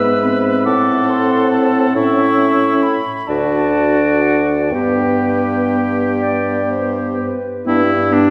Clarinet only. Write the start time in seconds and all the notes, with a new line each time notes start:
Already playing: E5
0.66 F#5
1.95 E5
3.28 D5
4.72 B4
6.22 D5
6.71 C5
7.20 B4
7.68 D4
8.13 D4